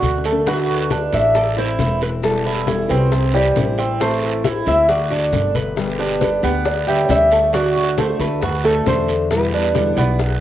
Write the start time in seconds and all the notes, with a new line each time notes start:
Already playing: F#4
0.01 D2 D3 A3 F#4, high conga, short guiro, maracas
0.18 low bongo
0.24 A3, short guiro, maracas
0.33 low bongo
0.46 D3 A3 D4 F#4 B4, high bongo, high conga, long guiro, maracas
0.68 high bongo, high conga, maracas
0.90 D3 A3 D4 F#4, high bongo, high conga, short guiro, maracas
1.12 A1 A3 D4 F#4 E5, high bongo, high conga, short guiro, maracas
1.34 A4 D5, muted steel-string acoustic guitar stroke, high bongo, high conga, long guiro, maracas
1.57 A3 C4 E4 C5, high conga, maracas
1.79 E1 E3 A3 C4 E4, high bongo, low bongo, high conga, short guiro, maracas
2.01 B4, high bongo, short guiro, maracas
2.22 B2 E3 G3 B3 F#4 A4, high bongo, high conga, long guiro, maracas
2.45 E4, high bongo, high conga, maracas
2.67 E3 G3 B3 F#4 A4, high bongo, high conga, short guiro, maracas
2.88 C2 E3 G3 B3 C4 F#4 B4, high bongo, high conga, short guiro, maracas
3.12 C5, muted steel-string acoustic guitar stroke, high bongo, high conga, long guiro, maracas
3.33 E3 G3 C4 E4 D5, high conga, maracas
3.55 A1 E3 G3 C4 E4 C5, high bongo, low bongo, high conga, short guiro, maracas
3.78 C4, high bongo, short guiro, maracas
4.00 E3 A3 C4 E4 C5, high bongo, high conga, long guiro, maracas
4.22 high bongo, high conga, maracas
4.44 E3 A3 C4 E4, high bongo, high conga, short guiro, maracas
4.66 D2 A3 C4 E4 E5, high bongo, high conga, short guiro, maracas
4.88 F#4 D5, muted steel-string acoustic guitar stroke, high bongo, high conga, long guiro, maracas
5.10 A3 D4 F#4, high conga, maracas
5.32 G1 D3 A3 D4 F#4, high bongo, low bongo, high conga, short guiro, maracas
5.55 B4, high bongo, high conga, short guiro, maracas
5.76 B2 D3 G3 B3 G4, high bongo, high conga, long guiro, maracas
5.99 D4 G4, high bongo, high conga, maracas
6.21 D3 G3 B3 G4 B4, high bongo, high conga, short guiro, maracas
6.43 D2 D3 G3 B3 G4, high bongo, high conga, short guiro, maracas
6.65 D5, muted steel-string acoustic guitar stroke, high bongo, high conga, long guiro, maracas
6.87 D3 G3 B3 G4 E5, high conga, maracas
7.03 C#5
7.09 D2 G3 B3 D5 E5, high bongo, low bongo, high conga, short guiro, maracas
7.31 A3, high bongo, short guiro, maracas
7.53 D3 A3 D4 F#4 D5, high bongo, high conga, long guiro, maracas
7.75 A3 D4 F#4, high bongo, high conga, maracas
7.97 D3 A3 D4 F#4 C5, high bongo, high conga, short guiro, maracas
8.19 D2 A3 D4 F#4 B4, high conga, short guiro, maracas
8.41 F#4, muted steel-string acoustic guitar stroke, high bongo, high conga, low conga, long guiro, maracas
8.63 A3 D4 F#4 A4, high bongo, high conga, maracas
8.85 E2 D3 A3 D4 F#4 C5, high bongo, low bongo, high conga, short guiro, maracas
9.08 high bongo, high conga, short guiro, maracas
9.30 B2 D3 G3 B3 E4 B4, high bongo, high conga, long guiro, maracas
9.52 G3 B3 D4 E4, high bongo, high conga, maracas
9.74 B2 D3 G3 B3 E4, high bongo, high conga, short guiro, maracas
9.95 B1 G3 B3 E4 D5, short guiro, maracas
10.18 muted steel-string acoustic guitar stroke, high bongo, high conga, long guiro, maracas